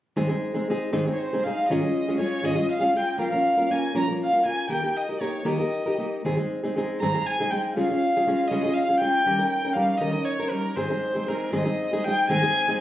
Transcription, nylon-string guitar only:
0.16 G#2 D#3 G#3 C4 D#4 G#4
0.29 G#3 C4 D#4 G#4
0.54 G#3 C4 D#4 G#4
0.70 G#3 C4 D#4 G#4
0.93 G#2 D#3 G#3 C4 D#4 G#4
1.07 G#3 C4 D#4 G#4
1.33 G#3 C4 D#4 G#4
1.45 G#3 C4 D#4 G#4
1.70 G#2 D#3 G#3 C#4 F4 G#4
1.82 G#3 C#4 F4 G#4
2.08 G#3 C#4 F4 G#4
2.18 G#3 C#4 F4 G#4
2.43 G#2 D#3 G#3 C#4 F4 G#4
2.55 G#3 C#4 F4 G#4
2.80 G#3 C#4 F4 G#4
2.95 G#3 C#4 F4 G#4
3.18 A#2 F3 A#3 C#4 F4 A#4
3.32 A#3 C#4 F4 A#4
3.58 A#3 C#4 F4 A#4
3.70 A#3 C#4 F4 A#4
3.95 A#2 F3 A#3 C#4 F4 A#4
4.08 A#3 C#4 F4 A#4
4.33 A#3 C#4 F4 A#4
4.44 A#3 C#4 F4 A#4
4.69 D#3 A#3 D#4 G4 A#4
4.83 D#4 G4 A#4
5.09 D#4 G4 A#4
5.21 A#3 D#4 G4 A#4
5.45 D#3 A#3 D#4 G4 A#4
5.59 D#4 G4 A#4
5.86 D#4 G4 A#4
5.98 A#3 D#4 G4 A#4
6.25 G#2 D#3 G#3 C4 D#4 G#4
6.37 G#3 C4 D#4 G#4
6.64 G#3 C4 D#4 G#4
6.76 G#3 C4 D#4 G#4
7.02 G#2 D#3 G#3 C4 D#4 G#4
7.15 G#3 C4 D#4 G#4
7.40 G#3 C4 D#4 G#4
7.52 G#3 C4 D#4 G#4
7.76 C#3 G#3 C#4 F4 G#4
7.90 C#4 F4 G#4
8.17 C#4 F4 G#4
8.27 G#3 C#4 F4 G#4
8.51 C#3 G#3 C#4 F4 G#4
8.64 C#4 F4 G#4
8.89 C#4 F4 G#4
9.01 G#3 C#4 F4 G#4
9.26 D#3 G3 C#4 D#4 A#4
9.39 C#4 D#4 A#4
9.65 C#4 D#4 A#4
9.75 G3 C#4 D#4 A#4
10.00 D#3 G3 C#4 D#4 A#4
10.13 C#4 D#4 A#4
10.40 C#4 D#4 A#4
10.51 G3 C#4 D#4 A#4
10.77 G#2 D#3 G#3 C4 D#4 G#4
10.90 G#3 C4 D#4 G#4
11.15 G#3 C4 D#4 G#4
11.28 G#3 C4 D#4 G#4
11.52 G#2 D#3 G#3 C4 D#4 G#4
11.66 G#3 C4 D#4 G#4
11.93 G#3 C4 D#4 G#4
12.08 G#3 C4 D#4 G#4
12.29 G#2 D#3 G#3 C4 D#4 G#4
12.43 G#3 C4 D#4 G#4
12.68 G#3 C4 D#4 G#4

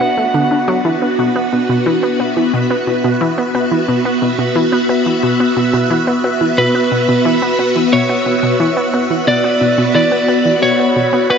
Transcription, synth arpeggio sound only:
0.01 B3
0.17 A3
0.34 D3
0.51 D3
0.68 F#3
0.85 E3
1.02 B3
1.19 B2
1.36 B3
1.53 B2
1.69 B2
1.86 E3
2.03 B3
2.20 B3
2.37 E3
2.54 B2
2.71 B3
2.87 B2
3.04 B2
3.21 E3
3.38 B3
3.55 B3
3.71 E3
3.88 B2
4.05 B3
4.22 B2
4.39 B2
4.56 E3
4.72 B3
4.89 B3
5.06 E3
5.23 B2
5.40 B3
5.57 B2
5.73 B2
5.90 E3
6.07 B3
6.24 B3
6.41 E3
6.58 B2
6.75 B3
6.92 B2
7.09 B2
7.25 E3
7.42 B3
7.59 B3
7.76 E3
7.93 B2
8.09 B3
8.26 B2
8.43 B2
8.60 E3
8.77 B3
8.94 B3
9.11 E3
9.27 B2
9.44 B3
9.61 B2
9.78 B2
9.95 E3
10.12 B3
10.28 B3
10.45 E3
10.62 B2
10.79 B3
10.96 B2
11.13 B3
11.30 F#4

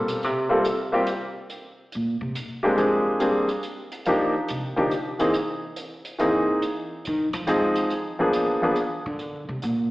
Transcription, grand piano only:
Already playing: G3 A#3 C4 F4 A4
0.49 G3 A#3 C4 F4 A4
0.92 G3 A#3 C4 F4 G4
2.63 G#3 A#3 C4 D4 G4
2.77 F3 A#3 C4 D4 G#4
3.20 G3 A#3 C4 D4 G#4
4.06 F3 A#3 D4 D#4 G4
4.76 F3 A#3 D4 D#4 G4
5.19 E3 A#3 C4 D#4 G#4
6.19 E3 A#3 C4 D#4 G#4
7.47 F3 G#3 C4 D#4 G#4
8.19 F3 A#3 B3 D4 G#4
8.62 F3 A#3 B3 D4 G#4

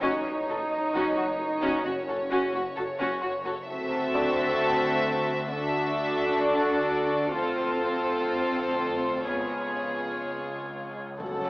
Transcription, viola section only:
0.01 F#4
0.48 F#4
0.93 F#4
1.16 F#4
1.61 F#4
1.85 F#4
2.08 F#4
2.30 F#4
2.53 F#4
2.77 F#4
2.99 F#4
3.23 F#4
3.45 F#4
3.67 F#4
5.52 F#4
7.37 F4
9.26 F4
11.19 A4

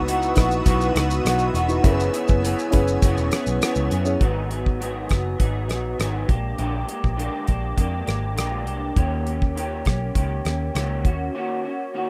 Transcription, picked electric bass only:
Already playing: C#2
0.37 A#1
0.66 B1
0.95 C#2
1.25 B1
1.54 E1
1.84 F#1
2.29 F#1
2.73 F#1
3.02 F#1
3.17 E1
3.47 B1
3.61 muted picked electric bass stroke
3.76 C#2
3.91 F#2
4.21 G#1
5.11 F#1
5.40 G#1
5.70 A#1
5.99 G#1
6.29 A#1
6.59 A#1
7.04 A#1
7.49 A#1
7.78 F2
8.08 G#1
8.37 A#1
8.67 C2
8.96 D#2
9.86 B1
10.15 C#2
10.45 D#2
10.75 C#2
11.05 D#2

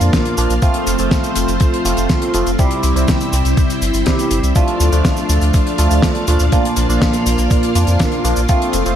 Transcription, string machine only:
Already playing: A#3 D4 F4 D5 F5
0.62 A3 C4 C5
2.59 G3 E4 C5 E5
4.56 A3 D4 F4 D5 F5
6.52 A#3
8.49 A3 C4 C5

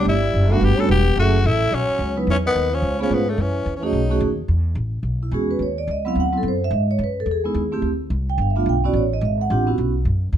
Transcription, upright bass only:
0.05 G1
0.34 F#1
0.61 G1
0.78 muted upright bass stroke
0.88 E1
1.16 F#1
1.44 A1
1.71 B1
1.88 muted upright bass stroke
1.99 C#2
2.27 E2
2.55 D#2
2.82 C#2
3.10 G#2
3.38 F#2
3.66 E2
3.93 B1
4.20 D#2
4.48 E2
4.75 A1
5.03 B1
5.31 E2
5.59 D#2
5.87 C#2
6.15 D2
6.43 F#2
6.71 G#2
6.99 F#2
7.26 E2
7.54 D#2
7.82 D2
8.10 C2
8.38 G1
8.66 B1
8.93 A1
9.21 G#1
9.50 A1
9.78 B1
10.05 F#2
10.33 E2

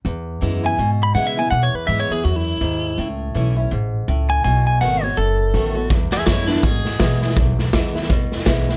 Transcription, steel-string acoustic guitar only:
0.06 E2
0.41 E3 G#3 B3 E4
0.63 B3 E4
0.79 B2
1.15 E3 G#3 B3 E4
1.37 B3 E4
1.52 E2
1.88 E3 G#3 B3 E4
2.10 B3 E4
2.25 F#2
2.61 G#2
2.98 A2
3.35 E3 A3 C#4 E4
3.56 C#4 E4
3.71 G#2
4.08 A2
4.44 B2
4.81 D#3 A3 B3 F#4
5.03 B3 F#4
5.17 F#2
5.54 D#3 A3 B3 F#4
5.75 B3 F#4
5.90 E2
6.27 E3 G#3 B3 E4
6.49 B3 E4
6.63 B2
7.00 E3 G#3 B3 E4
7.22 B3 E4
7.37 E2
7.73 E3 G#3 B3 E4
7.95 B3 E4
8.09 B2
8.46 E3 G#3 B3 E4
8.68 B3 E4

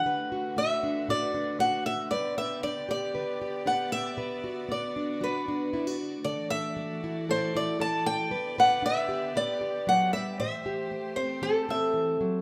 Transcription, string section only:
Already playing: D3
0.04 A3 F#4 B4
2.12 B3 G4 D5
4.19 F#4
6.25 E3 A3 F#4 D5
8.32 D3 B3 G4
10.37 E3 A3 G4 C5

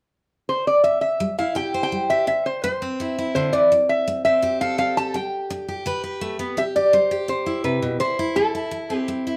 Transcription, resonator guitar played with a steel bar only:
0.49 C5
0.67 D5
0.84 E5
1.01 E5
1.39 F5
1.56 G5
1.83 G5
2.10 E5
2.28 E5
2.46 C5
2.64 C5
3.35 C5
3.53 D5
3.89 E5
4.25 E5
4.61 F5
4.79 F5
4.97 A5
5.15 G5
6.58 E5
6.76 D5
6.94 C5
7.29 C5
7.64 B4
8.00 C5
8.36 A4
8.97 G4

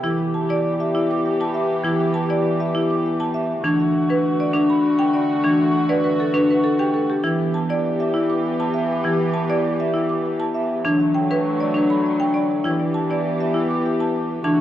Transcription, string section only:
0.04 E3 B3 G4
3.64 D3 A3 F#4
7.24 E3 B3 G4
10.85 D3 F#3 A3
12.65 E3 B3 G4
14.44 D3 A3 F#4

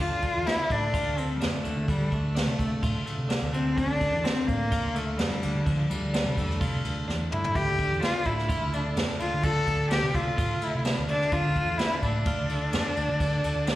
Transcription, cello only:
0.00 F4
0.46 E4
0.71 D4
1.19 C4
1.36 G3
1.43 A3
1.90 G3
2.13 A3
3.54 C4
3.77 D4
4.24 C4
4.47 A#3
4.95 A3
5.17 G3
5.64 F3
5.90 G3
7.32 E4
7.55 G4
8.03 F4
8.26 E4
8.74 D4
9.20 F4
9.43 A4
9.91 G4
10.15 F4
10.63 E4
11.09 D4
11.33 F4
11.78 E4
12.02 D4

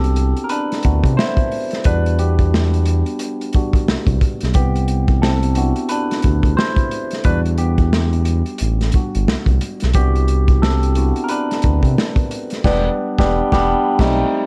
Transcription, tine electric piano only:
Already playing: B3 C4 D4 E4 F#4 G4 A4
0.44 A#4
0.50 D4 B4
0.84 B3 D4 E4 F#4
1.17 E4 C5
1.86 G3 D4 F#4 B4
2.19 B3 G4
3.55 G3 D4 F#4
4.55 B3 G4
5.22 C4 A4
5.57 B3 D4 E4 F#4
5.89 D4 B4
6.57 E4 C5
7.25 G3 D4 F#4 B4
7.58 B3 G4
8.94 G3 D4 F#4
9.95 B3 D4 E4 F#4 G4
10.62 C4 A4
10.97 B3 D4 E4 F#4
11.24 A#4
11.29 D4 B4
12.64 G3 B3 D4 G4
13.19 G3 B3 D4 G4
13.52 G3 B3 D4 G4
14.00 G3 A3 C4 D#4

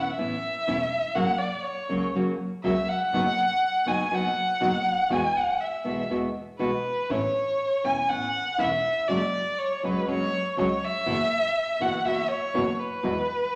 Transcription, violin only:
Already playing: F#5
0.15 E5
1.15 F#5
1.39 D5
1.62 C#5
2.64 E5
2.89 F#5
3.88 G#5
4.15 F#5
5.12 G#5
5.37 F#5
5.61 E5
6.60 B4
7.10 C#5
7.85 G#5
8.10 F#5
8.60 E5
9.08 D5
9.59 C#5
9.78 C#5
9.85 B4
10.09 C#5
10.59 C#5
10.85 E5
11.82 F#5
12.05 E5
12.29 C#5
12.79 B4

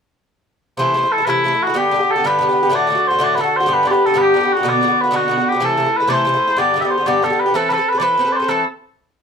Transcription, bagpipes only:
0.78 C5
1.12 A4
1.25 E4 B4
1.62 F#4
1.78 G4
2.11 A4
2.26 B4
2.75 D5
3.07 C5
3.23 D5
3.35 B4
3.41 A4
3.56 C5
3.73 B4
3.87 B4 D5
4.06 A4
4.18 G4 B4
4.53 F#4
4.69 D5
5.01 B4
5.16 F#4
5.49 G4
5.65 A4
5.97 B4
6.09 C5 D5
6.58 D5
6.81 E5
6.85 D5
6.90 C5
7.07 D5
7.24 A4
7.40 B4
7.56 A4
7.69 A4 B4
7.89 B4
7.98 D5
8.02 B4
8.32 C5 D5
8.49 A4

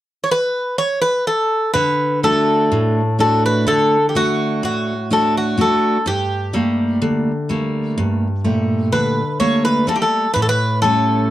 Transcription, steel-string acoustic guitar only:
1.75 D3
2.23 A3 D4 F#4
2.72 A2
3.19 A3 D4 F#4
3.67 D3
4.15 A3 D4 F#4
4.63 A2
5.11 A3 D4 F#4
5.58 A3 D4 F#4
6.06 G2
6.53 G3 A3 A#3
7.02 D3
7.49 G3 A3 A#3
7.98 G2
8.44 A#2 G3 A3
8.93 D3
9.40 G3 A3 A#3
9.87 G3 A3 A#3
10.36 A2
10.83 G3 A3 C#4

